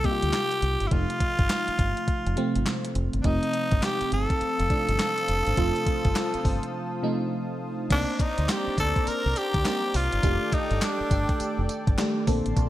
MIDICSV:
0, 0, Header, 1, 7, 480
1, 0, Start_track
1, 0, Tempo, 582524
1, 753, Time_signature, 4, 2, 24, 8
1, 10457, End_track
2, 0, Start_track
2, 0, Title_t, "Analog synth pad"
2, 0, Program_c, 0, 89
2, 2670, Note_on_c, 0, 72, 79
2, 2671, Note_on_c, 0, 77, 74
2, 2671, Note_on_c, 0, 87, 97
2, 2672, Note_on_c, 0, 81, 76
2, 6479, Note_off_c, 0, 72, 0
2, 6479, Note_off_c, 0, 77, 0
2, 6479, Note_off_c, 0, 81, 0
2, 6479, Note_off_c, 0, 87, 0
2, 6511, Note_on_c, 0, 72, 81
2, 6512, Note_on_c, 0, 82, 81
2, 6512, Note_on_c, 0, 86, 90
2, 6513, Note_on_c, 0, 74, 84
2, 8413, Note_off_c, 0, 72, 0
2, 8413, Note_off_c, 0, 82, 0
2, 8414, Note_off_c, 0, 74, 0
2, 8432, Note_on_c, 0, 74, 80
2, 8433, Note_on_c, 0, 79, 78
2, 8435, Note_on_c, 0, 69, 85
2, 10080, Note_off_c, 0, 86, 0
2, 10096, Note_off_c, 0, 74, 0
2, 10096, Note_off_c, 0, 79, 0
2, 10097, Note_off_c, 0, 69, 0
2, 10113, Note_on_c, 0, 74, 75
2, 10113, Note_on_c, 0, 81, 74
2, 10114, Note_on_c, 0, 58, 84
2, 10114, Note_on_c, 0, 84, 91
2, 10457, Note_off_c, 0, 58, 0
2, 10457, Note_off_c, 0, 74, 0
2, 10457, Note_off_c, 0, 81, 0
2, 10457, Note_off_c, 0, 84, 0
2, 10457, End_track
3, 0, Start_track
3, 0, Title_t, "Tenor saxophone"
3, 0, Program_c, 1, 66
3, 45, Note_on_c, 1, 67, 117
3, 721, Note_on_c, 1, 64, 62
3, 733, Note_off_c, 1, 67, 0
3, 764, Note_on_c, 1, 65, 101
3, 776, Note_off_c, 1, 64, 0
3, 2438, Note_off_c, 1, 65, 0
3, 2641, Note_on_c, 1, 62, 70
3, 2685, Note_on_c, 1, 63, 105
3, 2697, Note_off_c, 1, 62, 0
3, 3165, Note_on_c, 1, 67, 97
3, 3177, Note_off_c, 1, 63, 0
3, 3399, Note_off_c, 1, 67, 0
3, 3407, Note_on_c, 1, 69, 108
3, 6007, Note_off_c, 1, 69, 0
3, 6527, Note_on_c, 1, 62, 102
3, 6766, Note_on_c, 1, 63, 101
3, 6778, Note_off_c, 1, 62, 0
3, 7007, Note_on_c, 1, 67, 101
3, 7019, Note_off_c, 1, 63, 0
3, 7240, Note_off_c, 1, 67, 0
3, 7248, Note_on_c, 1, 69, 104
3, 7484, Note_on_c, 1, 70, 109
3, 7497, Note_off_c, 1, 69, 0
3, 7726, Note_on_c, 1, 67, 116
3, 7738, Note_off_c, 1, 70, 0
3, 8208, Note_on_c, 1, 65, 103
3, 8220, Note_off_c, 1, 67, 0
3, 8684, Note_on_c, 1, 63, 91
3, 8696, Note_off_c, 1, 65, 0
3, 8926, Note_on_c, 1, 62, 81
3, 8938, Note_off_c, 1, 63, 0
3, 9640, Note_off_c, 1, 62, 0
3, 10457, End_track
4, 0, Start_track
4, 0, Title_t, "FM electric piano"
4, 0, Program_c, 2, 5
4, 0, Control_c, 2, 64, 127
4, 0, Note_on_c, 2, 48, 74
4, 0, Note_on_c, 2, 55, 66
4, 0, Note_on_c, 2, 58, 66
4, 0, Note_on_c, 2, 63, 87
4, 30, Note_off_c, 2, 48, 0
4, 30, Note_on_c, 2, 48, 75
4, 34, Note_off_c, 2, 55, 0
4, 34, Note_on_c, 2, 55, 75
4, 36, Note_off_c, 2, 58, 0
4, 36, Note_on_c, 2, 58, 72
4, 40, Note_off_c, 2, 63, 0
4, 40, Note_on_c, 2, 63, 73
4, 93, Note_on_c, 2, 65, 89
4, 104, Note_off_c, 2, 63, 0
4, 640, Note_off_c, 2, 48, 0
4, 642, Note_off_c, 2, 55, 0
4, 643, Note_off_c, 2, 58, 0
4, 672, Note_off_c, 2, 65, 0
4, 747, Note_on_c, 2, 48, 72
4, 750, Note_on_c, 2, 53, 71
4, 754, Note_on_c, 2, 57, 73
4, 757, Note_on_c, 2, 63, 82
4, 765, Control_c, 2, 64, 0
4, 910, Control_c, 2, 64, 127
4, 1541, Note_off_c, 2, 48, 0
4, 1542, Note_off_c, 2, 53, 0
4, 1545, Note_off_c, 2, 57, 0
4, 1546, Note_off_c, 2, 63, 0
4, 1948, Note_on_c, 2, 48, 97
4, 1952, Note_on_c, 2, 53, 87
4, 1955, Note_on_c, 2, 57, 86
4, 1958, Note_on_c, 2, 60, 105
4, 2559, Note_off_c, 2, 48, 0
4, 2561, Note_off_c, 2, 53, 0
4, 2563, Note_off_c, 2, 57, 0
4, 2564, Note_off_c, 2, 60, 0
4, 2669, Note_on_c, 2, 48, 73
4, 2672, Note_on_c, 2, 53, 70
4, 2676, Note_on_c, 2, 57, 69
4, 2678, Note_on_c, 2, 63, 86
4, 3462, Note_off_c, 2, 48, 0
4, 3463, Note_off_c, 2, 53, 0
4, 3465, Note_off_c, 2, 57, 0
4, 3466, Note_off_c, 2, 63, 0
4, 3869, Note_on_c, 2, 48, 75
4, 3871, Note_on_c, 2, 53, 73
4, 3875, Note_on_c, 2, 57, 72
4, 3878, Note_on_c, 2, 62, 88
4, 4480, Note_off_c, 2, 48, 0
4, 4481, Note_off_c, 2, 53, 0
4, 4482, Note_off_c, 2, 57, 0
4, 4484, Note_off_c, 2, 62, 0
4, 4588, Note_on_c, 2, 48, 91
4, 4591, Note_on_c, 2, 53, 78
4, 4595, Note_on_c, 2, 57, 85
4, 4598, Note_on_c, 2, 65, 104
4, 5381, Note_off_c, 2, 48, 0
4, 5383, Note_off_c, 2, 53, 0
4, 5385, Note_off_c, 2, 57, 0
4, 5386, Note_off_c, 2, 65, 0
4, 5789, Note_on_c, 2, 48, 97
4, 5792, Note_on_c, 2, 53, 90
4, 5795, Note_on_c, 2, 57, 87
4, 5798, Note_on_c, 2, 63, 102
4, 6400, Note_off_c, 2, 48, 0
4, 6401, Note_off_c, 2, 53, 0
4, 6403, Note_off_c, 2, 57, 0
4, 6404, Note_off_c, 2, 63, 0
4, 6508, Note_on_c, 2, 62, 81
4, 6512, Note_on_c, 2, 58, 70
4, 6515, Note_on_c, 2, 60, 77
4, 6519, Note_on_c, 2, 63, 86
4, 6525, Control_c, 2, 64, 0
4, 6675, Control_c, 2, 64, 127
4, 7301, Note_off_c, 2, 62, 0
4, 7303, Note_off_c, 2, 58, 0
4, 7305, Note_off_c, 2, 60, 0
4, 7307, Note_off_c, 2, 63, 0
4, 7950, Note_on_c, 2, 62, 67
4, 7952, Note_on_c, 2, 58, 72
4, 7956, Note_on_c, 2, 60, 68
4, 7960, Note_on_c, 2, 63, 82
4, 8363, Note_off_c, 2, 62, 0
4, 8365, Note_off_c, 2, 58, 0
4, 8367, Note_off_c, 2, 60, 0
4, 8368, Note_off_c, 2, 63, 0
4, 8428, Note_on_c, 2, 51, 75
4, 8432, Note_on_c, 2, 57, 72
4, 8434, Note_on_c, 2, 62, 69
4, 8438, Note_on_c, 2, 67, 85
4, 8446, Control_c, 2, 64, 0
4, 8577, Control_c, 2, 64, 127
4, 9221, Note_off_c, 2, 51, 0
4, 9223, Note_off_c, 2, 57, 0
4, 9225, Note_off_c, 2, 62, 0
4, 9226, Note_off_c, 2, 67, 0
4, 9869, Note_on_c, 2, 51, 90
4, 9873, Note_on_c, 2, 57, 81
4, 9876, Note_on_c, 2, 62, 78
4, 9878, Note_on_c, 2, 67, 102
4, 10109, Note_on_c, 2, 50, 95
4, 10111, Note_off_c, 2, 51, 0
4, 10113, Note_off_c, 2, 57, 0
4, 10113, Note_on_c, 2, 58, 85
4, 10115, Note_off_c, 2, 62, 0
4, 10116, Note_off_c, 2, 67, 0
4, 10116, Note_on_c, 2, 60, 86
4, 10119, Note_on_c, 2, 69, 111
4, 10124, Control_c, 2, 64, 0
4, 10278, Control_c, 2, 64, 127
4, 10457, Note_off_c, 2, 50, 0
4, 10457, Note_off_c, 2, 58, 0
4, 10457, Note_off_c, 2, 60, 0
4, 10457, Note_off_c, 2, 69, 0
4, 10457, End_track
5, 0, Start_track
5, 0, Title_t, "Fingered electric bass"
5, 0, Program_c, 3, 33
5, 189, Note_on_c, 3, 38, 91
5, 250, Note_off_c, 3, 38, 0
5, 516, Note_on_c, 3, 36, 93
5, 622, Note_off_c, 3, 36, 0
5, 668, Note_on_c, 3, 31, 95
5, 729, Note_off_c, 3, 31, 0
5, 755, Note_on_c, 3, 29, 103
5, 861, Note_off_c, 3, 29, 0
5, 1145, Note_on_c, 3, 31, 86
5, 1208, Note_off_c, 3, 31, 0
5, 1474, Note_on_c, 3, 31, 85
5, 1580, Note_off_c, 3, 31, 0
5, 1868, Note_on_c, 3, 29, 88
5, 1929, Note_off_c, 3, 29, 0
5, 2108, Note_on_c, 3, 31, 86
5, 2170, Note_off_c, 3, 31, 0
5, 2436, Note_on_c, 3, 29, 87
5, 2542, Note_off_c, 3, 29, 0
5, 2588, Note_on_c, 3, 31, 83
5, 2650, Note_off_c, 3, 31, 0
5, 2674, Note_on_c, 3, 29, 104
5, 2781, Note_off_c, 3, 29, 0
5, 3065, Note_on_c, 3, 31, 89
5, 3128, Note_off_c, 3, 31, 0
5, 3398, Note_on_c, 3, 31, 83
5, 3503, Note_off_c, 3, 31, 0
5, 3789, Note_on_c, 3, 29, 97
5, 3850, Note_off_c, 3, 29, 0
5, 4028, Note_on_c, 3, 31, 76
5, 4090, Note_off_c, 3, 31, 0
5, 4358, Note_on_c, 3, 29, 86
5, 4463, Note_off_c, 3, 29, 0
5, 4508, Note_on_c, 3, 31, 90
5, 4570, Note_off_c, 3, 31, 0
5, 4595, Note_on_c, 3, 29, 103
5, 4701, Note_off_c, 3, 29, 0
5, 4986, Note_on_c, 3, 31, 86
5, 5048, Note_off_c, 3, 31, 0
5, 5314, Note_on_c, 3, 31, 100
5, 5420, Note_off_c, 3, 31, 0
5, 6515, Note_on_c, 3, 36, 101
5, 6622, Note_off_c, 3, 36, 0
5, 6909, Note_on_c, 3, 38, 98
5, 6970, Note_off_c, 3, 38, 0
5, 7235, Note_on_c, 3, 38, 102
5, 7341, Note_off_c, 3, 38, 0
5, 7629, Note_on_c, 3, 36, 87
5, 7691, Note_off_c, 3, 36, 0
5, 7864, Note_on_c, 3, 38, 87
5, 7927, Note_off_c, 3, 38, 0
5, 8197, Note_on_c, 3, 36, 91
5, 8302, Note_off_c, 3, 36, 0
5, 8349, Note_on_c, 3, 31, 84
5, 8410, Note_off_c, 3, 31, 0
5, 8435, Note_on_c, 3, 29, 99
5, 8541, Note_off_c, 3, 29, 0
5, 8826, Note_on_c, 3, 31, 91
5, 8888, Note_off_c, 3, 31, 0
5, 9154, Note_on_c, 3, 31, 93
5, 9261, Note_off_c, 3, 31, 0
5, 9549, Note_on_c, 3, 29, 96
5, 9610, Note_off_c, 3, 29, 0
5, 9784, Note_on_c, 3, 31, 90
5, 9847, Note_off_c, 3, 31, 0
5, 10115, Note_on_c, 3, 34, 103
5, 10221, Note_off_c, 3, 34, 0
5, 10270, Note_on_c, 3, 33, 83
5, 10331, Note_off_c, 3, 33, 0
5, 10356, Note_on_c, 3, 34, 94
5, 10457, Note_off_c, 3, 34, 0
5, 10457, End_track
6, 0, Start_track
6, 0, Title_t, "Muted fingered electric bass strokes"
6, 1387, Note_on_c, 9, 29, 45
6, 1469, Note_off_c, 9, 29, 0
6, 1712, Note_on_c, 9, 29, 44
6, 1795, Note_off_c, 9, 29, 0
6, 3308, Note_on_c, 9, 29, 45
6, 3391, Note_off_c, 9, 29, 0
6, 3638, Note_on_c, 9, 29, 44
6, 3721, Note_off_c, 9, 29, 0
6, 5230, Note_on_c, 9, 29, 47
6, 5313, Note_off_c, 9, 29, 0
6, 7148, Note_on_c, 9, 29, 47
6, 7231, Note_off_c, 9, 29, 0
6, 7478, Note_on_c, 9, 29, 46
6, 7561, Note_off_c, 9, 29, 0
6, 9069, Note_on_c, 9, 29, 51
6, 9152, Note_off_c, 9, 29, 0
6, 9397, Note_on_c, 9, 29, 46
6, 9479, Note_off_c, 9, 29, 0
6, 10457, End_track
7, 0, Start_track
7, 0, Title_t, "Drums"
7, 35, Note_on_c, 9, 36, 92
7, 35, Note_on_c, 9, 42, 60
7, 117, Note_off_c, 9, 36, 0
7, 117, Note_off_c, 9, 42, 0
7, 185, Note_on_c, 9, 42, 66
7, 267, Note_off_c, 9, 42, 0
7, 273, Note_on_c, 9, 38, 97
7, 273, Note_on_c, 9, 42, 70
7, 274, Note_on_c, 9, 39, 80
7, 275, Note_off_c, 9, 39, 0
7, 275, Note_on_c, 9, 39, 80
7, 355, Note_off_c, 9, 38, 0
7, 355, Note_off_c, 9, 42, 0
7, 358, Note_off_c, 9, 39, 0
7, 424, Note_on_c, 9, 42, 58
7, 506, Note_off_c, 9, 42, 0
7, 514, Note_on_c, 9, 42, 77
7, 596, Note_off_c, 9, 42, 0
7, 662, Note_on_c, 9, 42, 54
7, 745, Note_off_c, 9, 42, 0
7, 753, Note_on_c, 9, 36, 107
7, 753, Note_on_c, 9, 42, 75
7, 835, Note_off_c, 9, 42, 0
7, 836, Note_off_c, 9, 36, 0
7, 906, Note_on_c, 9, 42, 52
7, 988, Note_off_c, 9, 42, 0
7, 992, Note_on_c, 9, 36, 100
7, 994, Note_on_c, 9, 42, 86
7, 1075, Note_off_c, 9, 36, 0
7, 1076, Note_off_c, 9, 42, 0
7, 1142, Note_on_c, 9, 42, 55
7, 1144, Note_on_c, 9, 36, 95
7, 1224, Note_off_c, 9, 42, 0
7, 1227, Note_off_c, 9, 36, 0
7, 1232, Note_on_c, 9, 42, 68
7, 1234, Note_on_c, 9, 38, 112
7, 1235, Note_on_c, 9, 39, 102
7, 1315, Note_off_c, 9, 42, 0
7, 1316, Note_off_c, 9, 38, 0
7, 1318, Note_off_c, 9, 39, 0
7, 1383, Note_on_c, 9, 42, 52
7, 1465, Note_off_c, 9, 42, 0
7, 1473, Note_on_c, 9, 36, 81
7, 1474, Note_on_c, 9, 42, 77
7, 1555, Note_off_c, 9, 36, 0
7, 1557, Note_off_c, 9, 42, 0
7, 1624, Note_on_c, 9, 42, 49
7, 1706, Note_off_c, 9, 42, 0
7, 1711, Note_on_c, 9, 36, 89
7, 1712, Note_on_c, 9, 42, 68
7, 1794, Note_off_c, 9, 36, 0
7, 1794, Note_off_c, 9, 42, 0
7, 1866, Note_on_c, 9, 42, 55
7, 1949, Note_off_c, 9, 42, 0
7, 1953, Note_on_c, 9, 42, 62
7, 2035, Note_off_c, 9, 42, 0
7, 2105, Note_on_c, 9, 42, 64
7, 2188, Note_off_c, 9, 42, 0
7, 2194, Note_on_c, 9, 38, 109
7, 2194, Note_on_c, 9, 42, 62
7, 2195, Note_on_c, 9, 39, 83
7, 2197, Note_off_c, 9, 39, 0
7, 2197, Note_on_c, 9, 39, 88
7, 2276, Note_off_c, 9, 38, 0
7, 2276, Note_off_c, 9, 42, 0
7, 2279, Note_off_c, 9, 39, 0
7, 2345, Note_on_c, 9, 42, 59
7, 2427, Note_off_c, 9, 42, 0
7, 2434, Note_on_c, 9, 42, 81
7, 2516, Note_off_c, 9, 42, 0
7, 2582, Note_on_c, 9, 42, 52
7, 2665, Note_off_c, 9, 42, 0
7, 2671, Note_on_c, 9, 42, 79
7, 2673, Note_on_c, 9, 36, 100
7, 2754, Note_off_c, 9, 42, 0
7, 2755, Note_off_c, 9, 36, 0
7, 2825, Note_on_c, 9, 42, 56
7, 2907, Note_off_c, 9, 42, 0
7, 2913, Note_on_c, 9, 42, 86
7, 2995, Note_off_c, 9, 42, 0
7, 3061, Note_on_c, 9, 42, 55
7, 3064, Note_on_c, 9, 36, 93
7, 3144, Note_off_c, 9, 42, 0
7, 3146, Note_off_c, 9, 36, 0
7, 3151, Note_on_c, 9, 42, 69
7, 3153, Note_on_c, 9, 38, 109
7, 3155, Note_on_c, 9, 39, 94
7, 3234, Note_off_c, 9, 42, 0
7, 3235, Note_off_c, 9, 38, 0
7, 3237, Note_off_c, 9, 39, 0
7, 3302, Note_on_c, 9, 42, 56
7, 3384, Note_off_c, 9, 42, 0
7, 3395, Note_on_c, 9, 42, 74
7, 3477, Note_off_c, 9, 42, 0
7, 3543, Note_on_c, 9, 36, 84
7, 3545, Note_on_c, 9, 42, 49
7, 3626, Note_off_c, 9, 36, 0
7, 3627, Note_off_c, 9, 42, 0
7, 3634, Note_on_c, 9, 42, 68
7, 3716, Note_off_c, 9, 42, 0
7, 3787, Note_on_c, 9, 42, 54
7, 3869, Note_off_c, 9, 42, 0
7, 3874, Note_on_c, 9, 42, 66
7, 3875, Note_on_c, 9, 36, 84
7, 3956, Note_off_c, 9, 42, 0
7, 3957, Note_off_c, 9, 36, 0
7, 4026, Note_on_c, 9, 42, 66
7, 4108, Note_off_c, 9, 42, 0
7, 4115, Note_on_c, 9, 38, 100
7, 4115, Note_on_c, 9, 42, 68
7, 4116, Note_on_c, 9, 39, 82
7, 4117, Note_off_c, 9, 39, 0
7, 4117, Note_on_c, 9, 39, 79
7, 4197, Note_off_c, 9, 38, 0
7, 4197, Note_off_c, 9, 42, 0
7, 4199, Note_off_c, 9, 39, 0
7, 4265, Note_on_c, 9, 42, 60
7, 4347, Note_off_c, 9, 42, 0
7, 4354, Note_on_c, 9, 42, 82
7, 4436, Note_off_c, 9, 42, 0
7, 4503, Note_on_c, 9, 42, 54
7, 4586, Note_off_c, 9, 42, 0
7, 4592, Note_on_c, 9, 42, 82
7, 4593, Note_on_c, 9, 36, 108
7, 4675, Note_off_c, 9, 42, 0
7, 4676, Note_off_c, 9, 36, 0
7, 4746, Note_on_c, 9, 42, 53
7, 4828, Note_off_c, 9, 42, 0
7, 4832, Note_on_c, 9, 36, 103
7, 4833, Note_on_c, 9, 42, 88
7, 4915, Note_off_c, 9, 36, 0
7, 4916, Note_off_c, 9, 42, 0
7, 4982, Note_on_c, 9, 42, 56
7, 4985, Note_on_c, 9, 36, 94
7, 5064, Note_off_c, 9, 42, 0
7, 5067, Note_off_c, 9, 36, 0
7, 5072, Note_on_c, 9, 42, 72
7, 5073, Note_on_c, 9, 38, 113
7, 5075, Note_on_c, 9, 39, 92
7, 5155, Note_off_c, 9, 42, 0
7, 5156, Note_off_c, 9, 38, 0
7, 5158, Note_off_c, 9, 39, 0
7, 5223, Note_on_c, 9, 42, 56
7, 5305, Note_off_c, 9, 42, 0
7, 5313, Note_on_c, 9, 36, 85
7, 5316, Note_on_c, 9, 46, 76
7, 5396, Note_off_c, 9, 36, 0
7, 5398, Note_off_c, 9, 46, 0
7, 5464, Note_on_c, 9, 42, 50
7, 5546, Note_off_c, 9, 42, 0
7, 6513, Note_on_c, 9, 42, 82
7, 6513, Note_on_c, 9, 49, 93
7, 6513, Note_on_c, 9, 54, 67
7, 6514, Note_on_c, 9, 36, 110
7, 6595, Note_off_c, 9, 49, 0
7, 6595, Note_off_c, 9, 54, 0
7, 6596, Note_off_c, 9, 36, 0
7, 6596, Note_off_c, 9, 42, 0
7, 6753, Note_on_c, 9, 36, 99
7, 6755, Note_on_c, 9, 42, 86
7, 6757, Note_on_c, 9, 39, 69
7, 6835, Note_off_c, 9, 36, 0
7, 6837, Note_off_c, 9, 42, 0
7, 6840, Note_off_c, 9, 39, 0
7, 6903, Note_on_c, 9, 42, 56
7, 6986, Note_off_c, 9, 42, 0
7, 6992, Note_on_c, 9, 54, 98
7, 6993, Note_on_c, 9, 42, 65
7, 6994, Note_on_c, 9, 38, 118
7, 6996, Note_on_c, 9, 39, 99
7, 6998, Note_off_c, 9, 39, 0
7, 6998, Note_on_c, 9, 39, 100
7, 7075, Note_off_c, 9, 42, 0
7, 7075, Note_off_c, 9, 54, 0
7, 7077, Note_off_c, 9, 38, 0
7, 7081, Note_off_c, 9, 39, 0
7, 7233, Note_on_c, 9, 36, 89
7, 7234, Note_on_c, 9, 54, 72
7, 7236, Note_on_c, 9, 42, 76
7, 7316, Note_off_c, 9, 36, 0
7, 7316, Note_off_c, 9, 54, 0
7, 7318, Note_off_c, 9, 42, 0
7, 7384, Note_on_c, 9, 36, 89
7, 7386, Note_on_c, 9, 42, 52
7, 7466, Note_off_c, 9, 36, 0
7, 7468, Note_off_c, 9, 42, 0
7, 7473, Note_on_c, 9, 42, 66
7, 7474, Note_on_c, 9, 54, 68
7, 7556, Note_off_c, 9, 42, 0
7, 7557, Note_off_c, 9, 54, 0
7, 7713, Note_on_c, 9, 42, 69
7, 7713, Note_on_c, 9, 54, 66
7, 7795, Note_off_c, 9, 54, 0
7, 7796, Note_off_c, 9, 42, 0
7, 7863, Note_on_c, 9, 36, 112
7, 7864, Note_on_c, 9, 42, 66
7, 7945, Note_off_c, 9, 36, 0
7, 7947, Note_off_c, 9, 42, 0
7, 7953, Note_on_c, 9, 54, 87
7, 7954, Note_on_c, 9, 38, 107
7, 7954, Note_on_c, 9, 42, 63
7, 7955, Note_on_c, 9, 39, 88
7, 7957, Note_off_c, 9, 39, 0
7, 7957, Note_on_c, 9, 39, 84
7, 8035, Note_off_c, 9, 54, 0
7, 8036, Note_off_c, 9, 38, 0
7, 8036, Note_off_c, 9, 42, 0
7, 8039, Note_off_c, 9, 39, 0
7, 8193, Note_on_c, 9, 46, 87
7, 8194, Note_on_c, 9, 54, 73
7, 8275, Note_off_c, 9, 46, 0
7, 8276, Note_off_c, 9, 54, 0
7, 8343, Note_on_c, 9, 42, 57
7, 8425, Note_off_c, 9, 42, 0
7, 8431, Note_on_c, 9, 42, 74
7, 8431, Note_on_c, 9, 54, 69
7, 8433, Note_on_c, 9, 36, 117
7, 8514, Note_off_c, 9, 42, 0
7, 8514, Note_off_c, 9, 54, 0
7, 8516, Note_off_c, 9, 36, 0
7, 8672, Note_on_c, 9, 36, 106
7, 8674, Note_on_c, 9, 42, 85
7, 8677, Note_on_c, 9, 39, 69
7, 8755, Note_off_c, 9, 36, 0
7, 8756, Note_off_c, 9, 42, 0
7, 8760, Note_off_c, 9, 39, 0
7, 8822, Note_on_c, 9, 42, 55
7, 8905, Note_off_c, 9, 42, 0
7, 8911, Note_on_c, 9, 54, 97
7, 8912, Note_on_c, 9, 42, 71
7, 8913, Note_on_c, 9, 38, 121
7, 8915, Note_on_c, 9, 39, 91
7, 8916, Note_off_c, 9, 39, 0
7, 8916, Note_on_c, 9, 39, 103
7, 8994, Note_off_c, 9, 54, 0
7, 8995, Note_off_c, 9, 42, 0
7, 8996, Note_off_c, 9, 38, 0
7, 8998, Note_off_c, 9, 39, 0
7, 9153, Note_on_c, 9, 36, 88
7, 9153, Note_on_c, 9, 54, 72
7, 9155, Note_on_c, 9, 42, 76
7, 9235, Note_off_c, 9, 36, 0
7, 9235, Note_off_c, 9, 54, 0
7, 9237, Note_off_c, 9, 42, 0
7, 9303, Note_on_c, 9, 36, 93
7, 9304, Note_on_c, 9, 42, 53
7, 9385, Note_off_c, 9, 36, 0
7, 9386, Note_off_c, 9, 42, 0
7, 9393, Note_on_c, 9, 42, 71
7, 9394, Note_on_c, 9, 54, 68
7, 9476, Note_off_c, 9, 42, 0
7, 9476, Note_off_c, 9, 54, 0
7, 9633, Note_on_c, 9, 54, 69
7, 9634, Note_on_c, 9, 42, 68
7, 9716, Note_off_c, 9, 42, 0
7, 9716, Note_off_c, 9, 54, 0
7, 9783, Note_on_c, 9, 36, 109
7, 9784, Note_on_c, 9, 42, 63
7, 9866, Note_off_c, 9, 36, 0
7, 9866, Note_off_c, 9, 42, 0
7, 9873, Note_on_c, 9, 54, 89
7, 9874, Note_on_c, 9, 38, 110
7, 9874, Note_on_c, 9, 42, 67
7, 9875, Note_on_c, 9, 39, 80
7, 9956, Note_off_c, 9, 38, 0
7, 9956, Note_off_c, 9, 42, 0
7, 9956, Note_off_c, 9, 54, 0
7, 9958, Note_off_c, 9, 39, 0
7, 10113, Note_on_c, 9, 46, 80
7, 10114, Note_on_c, 9, 36, 108
7, 10114, Note_on_c, 9, 54, 74
7, 10196, Note_off_c, 9, 36, 0
7, 10196, Note_off_c, 9, 46, 0
7, 10197, Note_off_c, 9, 54, 0
7, 10265, Note_on_c, 9, 42, 52
7, 10347, Note_off_c, 9, 42, 0
7, 10354, Note_on_c, 9, 36, 114
7, 10354, Note_on_c, 9, 42, 81
7, 10354, Note_on_c, 9, 54, 68
7, 10437, Note_off_c, 9, 36, 0
7, 10437, Note_off_c, 9, 42, 0
7, 10437, Note_off_c, 9, 54, 0
7, 10457, End_track
0, 0, End_of_file